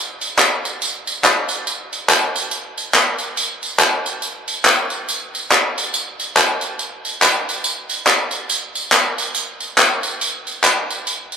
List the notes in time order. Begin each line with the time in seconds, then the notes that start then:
0.21 tambourine
0.39 clap, tambourine
0.65 tambourine
0.82 tambourine
1.07 tambourine
1.25 clap, tambourine
1.49 tambourine
1.67 tambourine
1.93 tambourine
2.10 clap, tambourine
2.36 tambourine
2.51 tambourine
2.78 tambourine
2.95 clap, tambourine
3.18 tambourine
3.37 tambourine
3.63 tambourine
3.80 clap, tambourine
4.06 tambourine
4.22 tambourine
4.48 tambourine
4.65 clap, tambourine
4.90 tambourine
5.09 tambourine
5.35 tambourine
5.52 clap, tambourine
5.78 tambourine
5.94 tambourine
6.20 tambourine
6.37 clap, tambourine
6.61 tambourine
6.79 tambourine
7.05 tambourine
7.22 clap, tambourine
7.49 tambourine
7.64 tambourine
7.90 tambourine
8.07 clap, tambourine
8.31 tambourine
8.49 tambourine
8.75 tambourine
8.92 clap, tambourine
9.18 tambourine
9.35 tambourine
9.60 tambourine
9.78 clap, tambourine
10.03 tambourine
10.21 tambourine
10.47 tambourine
10.64 clap, tambourine
10.90 tambourine
11.07 tambourine
11.32 tambourine